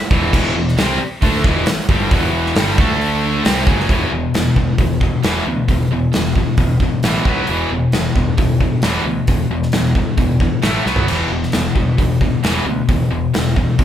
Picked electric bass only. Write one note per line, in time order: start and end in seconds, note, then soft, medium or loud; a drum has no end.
0.11 0.31 E1 loud
0.33 0.54 E1 medium
0.55 0.76 E1 medium
0.77 0.98 C2 medium
1.01 muted picked electric bass stroke soft
1.22 1.43 D2 medium
1.44 1.65 E1 medium
1.67 muted picked electric bass stroke soft
1.89 2.09 G1 medium
2.12 2.53 E1 medium
2.56 2.76 G1 medium
2.78 3.41 D2 medium
3.45 3.66 C2 medium
3.67 3.88 F#1 medium
3.90 4.04 E1 medium
4.12 4.27 E1 medium
4.34 4.49 E1 medium
4.56 4.71 E1 medium
4.79 5.08 E1 medium
5.25 5.39 E1 medium
5.46 5.61 D2 medium
5.69 5.83 E1 medium
5.91 6.06 E1 medium
6.14 6.43 E1 medium
6.58 6.88 E1 medium
7.04 7.18 A1 medium
7.25 7.40 B1 medium
7.49 7.64 E1 medium
7.71 7.86 E1 medium
7.93 8.08 E1 medium
8.16 8.31 E1 medium
8.38 8.68 E1 medium
8.83 8.98 E1 medium
9.05 9.20 D2 medium
9.28 9.43 E1 medium
9.51 9.66 E1 medium
9.73 10.03 E1 medium
10.18 10.48 E1 medium
10.64 10.79 A1 medium
10.86 11.01 B1 medium
11.08 11.23 E1 medium
11.30 11.45 E1 medium
11.53 11.68 E1 medium
11.76 11.91 E1 medium
11.98 12.28 E1 medium
12.44 12.58 E1 medium
12.66 12.81 D2 medium
12.89 13.04 E1 medium
13.11 13.26 E1 medium
13.34 13.63 E1 medium
13.79 13.84 E1 medium